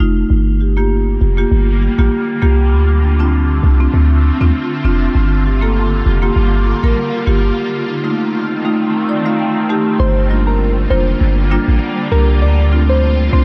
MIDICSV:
0, 0, Header, 1, 5, 480
1, 0, Start_track
1, 0, Key_signature, -2, "minor"
1, 0, Tempo, 606061
1, 237, Time_signature, 4, 2, 24, 8
1, 10648, End_track
2, 0, Start_track
2, 0, Title_t, "Soft synth lead"
2, 0, Program_c, 0, 80
2, 7917, Note_on_c, 0, 72, 99
2, 8110, Note_off_c, 0, 72, 0
2, 8292, Note_on_c, 0, 70, 72
2, 8485, Note_off_c, 0, 70, 0
2, 8635, Note_on_c, 0, 72, 87
2, 8829, Note_off_c, 0, 72, 0
2, 9596, Note_on_c, 0, 70, 87
2, 9705, Note_off_c, 0, 70, 0
2, 9836, Note_on_c, 0, 74, 91
2, 10030, Note_off_c, 0, 74, 0
2, 10212, Note_on_c, 0, 72, 79
2, 10405, Note_off_c, 0, 72, 0
2, 10557, Note_on_c, 0, 72, 86
2, 10648, Note_off_c, 0, 72, 0
2, 10648, End_track
3, 0, Start_track
3, 0, Title_t, "Marimba"
3, 0, Program_c, 1, 12
3, 0, Note_on_c, 1, 57, 84
3, 0, Note_on_c, 1, 63, 80
3, 2, Note_on_c, 1, 65, 93
3, 103, Note_off_c, 1, 57, 0
3, 105, Note_off_c, 1, 63, 0
3, 107, Note_off_c, 1, 65, 0
3, 474, Note_on_c, 1, 65, 81
3, 481, Note_on_c, 1, 67, 91
3, 529, Note_off_c, 1, 65, 0
3, 533, Note_off_c, 1, 67, 0
3, 608, Note_on_c, 1, 58, 75
3, 611, Note_on_c, 1, 65, 68
3, 615, Note_on_c, 1, 67, 89
3, 694, Note_off_c, 1, 58, 0
3, 695, Note_off_c, 1, 65, 0
3, 697, Note_off_c, 1, 67, 0
3, 955, Note_on_c, 1, 65, 84
3, 961, Note_on_c, 1, 67, 87
3, 1010, Note_off_c, 1, 65, 0
3, 1013, Note_off_c, 1, 67, 0
3, 1089, Note_on_c, 1, 58, 77
3, 1092, Note_on_c, 1, 65, 71
3, 1096, Note_on_c, 1, 67, 86
3, 1174, Note_off_c, 1, 58, 0
3, 1176, Note_off_c, 1, 65, 0
3, 1178, Note_off_c, 1, 67, 0
3, 1435, Note_on_c, 1, 65, 85
3, 1442, Note_on_c, 1, 67, 94
3, 1489, Note_off_c, 1, 65, 0
3, 1493, Note_off_c, 1, 67, 0
3, 1569, Note_on_c, 1, 58, 78
3, 1573, Note_on_c, 1, 65, 71
3, 1576, Note_on_c, 1, 67, 89
3, 1654, Note_off_c, 1, 58, 0
3, 1656, Note_off_c, 1, 65, 0
3, 1658, Note_off_c, 1, 67, 0
3, 1913, Note_on_c, 1, 58, 84
3, 1917, Note_on_c, 1, 65, 80
3, 1921, Note_on_c, 1, 67, 96
3, 2023, Note_off_c, 1, 58, 0
3, 2024, Note_off_c, 1, 65, 0
3, 2026, Note_off_c, 1, 67, 0
3, 2394, Note_on_c, 1, 62, 82
3, 2401, Note_on_c, 1, 65, 88
3, 2449, Note_off_c, 1, 62, 0
3, 2453, Note_off_c, 1, 65, 0
3, 2528, Note_on_c, 1, 60, 76
3, 2531, Note_on_c, 1, 62, 70
3, 2537, Note_on_c, 1, 65, 91
3, 2614, Note_off_c, 1, 60, 0
3, 2616, Note_off_c, 1, 62, 0
3, 2618, Note_off_c, 1, 65, 0
3, 2876, Note_on_c, 1, 62, 86
3, 2882, Note_on_c, 1, 65, 91
3, 2930, Note_off_c, 1, 62, 0
3, 2933, Note_off_c, 1, 65, 0
3, 3010, Note_on_c, 1, 60, 83
3, 3013, Note_on_c, 1, 62, 76
3, 3016, Note_on_c, 1, 65, 87
3, 3095, Note_off_c, 1, 60, 0
3, 3097, Note_off_c, 1, 62, 0
3, 3098, Note_off_c, 1, 65, 0
3, 3356, Note_on_c, 1, 62, 88
3, 3363, Note_on_c, 1, 65, 95
3, 3410, Note_off_c, 1, 62, 0
3, 3413, Note_off_c, 1, 65, 0
3, 3491, Note_on_c, 1, 60, 79
3, 3494, Note_on_c, 1, 62, 74
3, 3498, Note_on_c, 1, 65, 86
3, 3575, Note_off_c, 1, 60, 0
3, 3577, Note_off_c, 1, 62, 0
3, 3579, Note_off_c, 1, 65, 0
3, 3835, Note_on_c, 1, 60, 86
3, 3840, Note_on_c, 1, 62, 78
3, 3843, Note_on_c, 1, 65, 92
3, 3943, Note_off_c, 1, 60, 0
3, 3946, Note_off_c, 1, 62, 0
3, 3947, Note_off_c, 1, 65, 0
3, 4315, Note_on_c, 1, 65, 81
3, 4322, Note_on_c, 1, 67, 93
3, 4369, Note_off_c, 1, 65, 0
3, 4373, Note_off_c, 1, 67, 0
3, 4446, Note_on_c, 1, 58, 81
3, 4450, Note_on_c, 1, 65, 76
3, 4453, Note_on_c, 1, 69, 88
3, 4533, Note_off_c, 1, 58, 0
3, 4535, Note_off_c, 1, 65, 0
3, 4537, Note_off_c, 1, 69, 0
3, 4792, Note_on_c, 1, 65, 85
3, 4798, Note_on_c, 1, 67, 90
3, 4848, Note_off_c, 1, 65, 0
3, 4851, Note_off_c, 1, 67, 0
3, 4926, Note_on_c, 1, 58, 81
3, 4931, Note_on_c, 1, 65, 75
3, 4934, Note_on_c, 1, 67, 88
3, 5013, Note_off_c, 1, 58, 0
3, 5015, Note_off_c, 1, 65, 0
3, 5017, Note_off_c, 1, 67, 0
3, 5274, Note_on_c, 1, 65, 83
3, 5280, Note_on_c, 1, 69, 95
3, 5329, Note_off_c, 1, 65, 0
3, 5332, Note_off_c, 1, 69, 0
3, 5409, Note_on_c, 1, 58, 79
3, 5412, Note_on_c, 1, 65, 70
3, 5416, Note_on_c, 1, 70, 93
3, 5495, Note_off_c, 1, 58, 0
3, 5496, Note_off_c, 1, 65, 0
3, 5498, Note_off_c, 1, 70, 0
3, 5753, Note_on_c, 1, 58, 86
3, 5756, Note_on_c, 1, 65, 74
3, 5761, Note_on_c, 1, 67, 98
3, 5862, Note_off_c, 1, 58, 0
3, 5864, Note_off_c, 1, 65, 0
3, 5866, Note_off_c, 1, 67, 0
3, 6232, Note_on_c, 1, 63, 86
3, 6239, Note_on_c, 1, 65, 94
3, 6288, Note_off_c, 1, 63, 0
3, 6291, Note_off_c, 1, 65, 0
3, 6366, Note_on_c, 1, 57, 80
3, 6370, Note_on_c, 1, 63, 72
3, 6373, Note_on_c, 1, 65, 91
3, 6453, Note_off_c, 1, 57, 0
3, 6455, Note_off_c, 1, 63, 0
3, 6457, Note_off_c, 1, 65, 0
3, 6714, Note_on_c, 1, 63, 85
3, 6721, Note_on_c, 1, 65, 95
3, 6769, Note_off_c, 1, 63, 0
3, 6772, Note_off_c, 1, 65, 0
3, 6849, Note_on_c, 1, 57, 86
3, 6853, Note_on_c, 1, 63, 76
3, 6855, Note_on_c, 1, 65, 91
3, 6934, Note_off_c, 1, 57, 0
3, 6936, Note_off_c, 1, 63, 0
3, 6938, Note_off_c, 1, 65, 0
3, 7195, Note_on_c, 1, 63, 88
3, 7198, Note_on_c, 1, 74, 73
3, 7201, Note_on_c, 1, 65, 93
3, 7249, Note_off_c, 1, 63, 0
3, 7253, Note_off_c, 1, 65, 0
3, 7323, Note_off_c, 1, 74, 0
3, 7329, Note_on_c, 1, 57, 83
3, 7332, Note_on_c, 1, 63, 71
3, 7333, Note_on_c, 1, 77, 73
3, 7336, Note_on_c, 1, 65, 91
3, 7414, Note_off_c, 1, 57, 0
3, 7416, Note_off_c, 1, 63, 0
3, 7418, Note_off_c, 1, 65, 0
3, 7430, Note_off_c, 1, 77, 0
3, 7438, Note_on_c, 1, 79, 79
3, 7660, Note_off_c, 1, 79, 0
3, 7677, Note_on_c, 1, 57, 85
3, 7680, Note_on_c, 1, 63, 79
3, 7680, Note_on_c, 1, 81, 71
3, 7684, Note_on_c, 1, 67, 94
3, 7784, Note_off_c, 1, 57, 0
3, 7786, Note_off_c, 1, 63, 0
3, 7788, Note_off_c, 1, 67, 0
3, 7902, Note_off_c, 1, 81, 0
3, 8155, Note_on_c, 1, 55, 75
3, 8158, Note_on_c, 1, 58, 67
3, 8160, Note_on_c, 1, 62, 68
3, 8163, Note_on_c, 1, 65, 79
3, 8263, Note_off_c, 1, 55, 0
3, 8265, Note_off_c, 1, 58, 0
3, 8266, Note_off_c, 1, 62, 0
3, 8267, Note_off_c, 1, 65, 0
3, 8635, Note_on_c, 1, 55, 74
3, 8637, Note_on_c, 1, 58, 67
3, 8639, Note_on_c, 1, 62, 67
3, 8642, Note_on_c, 1, 65, 87
3, 8743, Note_off_c, 1, 55, 0
3, 8744, Note_off_c, 1, 58, 0
3, 8745, Note_off_c, 1, 62, 0
3, 8747, Note_off_c, 1, 65, 0
3, 9115, Note_on_c, 1, 55, 89
3, 9117, Note_on_c, 1, 58, 84
3, 9120, Note_on_c, 1, 62, 83
3, 9122, Note_on_c, 1, 65, 103
3, 9223, Note_off_c, 1, 55, 0
3, 9224, Note_off_c, 1, 58, 0
3, 9226, Note_off_c, 1, 62, 0
3, 9227, Note_off_c, 1, 65, 0
3, 9595, Note_on_c, 1, 55, 74
3, 9598, Note_on_c, 1, 58, 72
3, 9600, Note_on_c, 1, 62, 67
3, 9601, Note_on_c, 1, 67, 85
3, 9703, Note_off_c, 1, 55, 0
3, 9705, Note_off_c, 1, 58, 0
3, 9706, Note_off_c, 1, 62, 0
3, 9706, Note_off_c, 1, 67, 0
3, 10072, Note_on_c, 1, 57, 75
3, 10076, Note_on_c, 1, 60, 69
3, 10077, Note_on_c, 1, 62, 71
3, 10080, Note_on_c, 1, 65, 81
3, 10182, Note_off_c, 1, 57, 0
3, 10184, Note_off_c, 1, 60, 0
3, 10184, Note_off_c, 1, 62, 0
3, 10186, Note_off_c, 1, 65, 0
3, 10554, Note_on_c, 1, 57, 76
3, 10557, Note_on_c, 1, 60, 69
3, 10559, Note_on_c, 1, 62, 73
3, 10561, Note_on_c, 1, 65, 84
3, 10648, Note_off_c, 1, 57, 0
3, 10648, Note_off_c, 1, 60, 0
3, 10648, Note_off_c, 1, 62, 0
3, 10648, Note_off_c, 1, 65, 0
3, 10648, End_track
4, 0, Start_track
4, 0, Title_t, "Ambient pad"
4, 0, Program_c, 2, 92
4, 236, Note_on_c, 2, 55, 77
4, 236, Note_on_c, 2, 58, 77
4, 237, Note_on_c, 2, 50, 82
4, 237, Note_on_c, 2, 65, 94
4, 2137, Note_off_c, 2, 55, 0
4, 2137, Note_off_c, 2, 58, 0
4, 2154, Note_on_c, 2, 60, 79
4, 2156, Note_on_c, 2, 57, 75
4, 4056, Note_off_c, 2, 60, 0
4, 4057, Note_off_c, 2, 57, 0
4, 4077, Note_on_c, 2, 55, 79
4, 4077, Note_on_c, 2, 58, 77
4, 5965, Note_off_c, 2, 50, 0
4, 5977, Note_off_c, 2, 55, 0
4, 5978, Note_off_c, 2, 58, 0
4, 5995, Note_on_c, 2, 57, 77
4, 5996, Note_on_c, 2, 51, 87
4, 5996, Note_on_c, 2, 60, 76
4, 7885, Note_off_c, 2, 65, 0
4, 7897, Note_off_c, 2, 51, 0
4, 7897, Note_off_c, 2, 57, 0
4, 7897, Note_off_c, 2, 60, 0
4, 7916, Note_on_c, 2, 50, 84
4, 7916, Note_on_c, 2, 58, 75
4, 7917, Note_on_c, 2, 55, 81
4, 7917, Note_on_c, 2, 65, 95
4, 9817, Note_off_c, 2, 50, 0
4, 9817, Note_off_c, 2, 58, 0
4, 9818, Note_off_c, 2, 55, 0
4, 9838, Note_on_c, 2, 57, 80
4, 9838, Note_on_c, 2, 60, 76
4, 9839, Note_on_c, 2, 50, 83
4, 10648, Note_off_c, 2, 50, 0
4, 10648, Note_off_c, 2, 57, 0
4, 10648, Note_off_c, 2, 60, 0
4, 10648, Note_off_c, 2, 65, 0
4, 10648, End_track
5, 0, Start_track
5, 0, Title_t, "808-style bass"
5, 0, Program_c, 3, 38
5, 0, Note_on_c, 3, 29, 90
5, 184, Note_off_c, 3, 29, 0
5, 237, Note_on_c, 3, 31, 107
5, 925, Note_off_c, 3, 31, 0
5, 958, Note_on_c, 3, 29, 97
5, 1145, Note_off_c, 3, 29, 0
5, 1197, Note_on_c, 3, 31, 103
5, 1489, Note_off_c, 3, 31, 0
5, 1569, Note_on_c, 3, 33, 96
5, 1653, Note_off_c, 3, 33, 0
5, 1918, Note_on_c, 3, 36, 92
5, 2156, Note_on_c, 3, 38, 105
5, 2168, Note_off_c, 3, 36, 0
5, 2845, Note_off_c, 3, 38, 0
5, 2876, Note_on_c, 3, 36, 95
5, 3064, Note_off_c, 3, 36, 0
5, 3116, Note_on_c, 3, 38, 110
5, 3409, Note_off_c, 3, 38, 0
5, 3490, Note_on_c, 3, 39, 98
5, 3573, Note_off_c, 3, 39, 0
5, 3834, Note_on_c, 3, 29, 98
5, 4023, Note_off_c, 3, 29, 0
5, 4076, Note_on_c, 3, 31, 102
5, 4764, Note_off_c, 3, 31, 0
5, 4796, Note_on_c, 3, 29, 94
5, 4984, Note_off_c, 3, 29, 0
5, 5035, Note_on_c, 3, 31, 103
5, 5328, Note_off_c, 3, 31, 0
5, 5410, Note_on_c, 3, 33, 91
5, 5493, Note_off_c, 3, 33, 0
5, 5756, Note_on_c, 3, 31, 87
5, 5944, Note_off_c, 3, 31, 0
5, 7915, Note_on_c, 3, 31, 106
5, 8604, Note_off_c, 3, 31, 0
5, 8634, Note_on_c, 3, 29, 94
5, 8823, Note_off_c, 3, 29, 0
5, 8874, Note_on_c, 3, 31, 104
5, 9168, Note_off_c, 3, 31, 0
5, 9249, Note_on_c, 3, 33, 97
5, 9332, Note_off_c, 3, 33, 0
5, 9594, Note_on_c, 3, 36, 91
5, 9835, Note_on_c, 3, 38, 113
5, 9847, Note_off_c, 3, 36, 0
5, 10524, Note_off_c, 3, 38, 0
5, 10555, Note_on_c, 3, 36, 96
5, 10648, Note_off_c, 3, 36, 0
5, 10648, End_track
0, 0, End_of_file